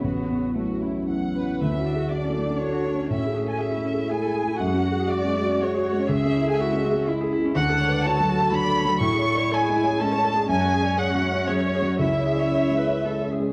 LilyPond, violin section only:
\new Staff \with { instrumentName = "Violin section" } { \time 3/4 \key a \major \tempo 4 = 121 << { fis'4 r4 fis''4 | e''4 d''4 cis''4 | e''8. gis''16 e''4 gis''4 | fis''4 d''4 cis''4 |
e''8. gis''16 e''4 r4 | fis''4 a''4 b''4 | cis'''4 gis''4 a''4 | gis''4 fis''4 cis''4 |
e''2~ e''8 r8 | } \\ { r4 fis'8 e'8 r8 b'8 | r2. | r2. | r2. |
r2. | r2. | r2. | r2. |
r2. | } >> }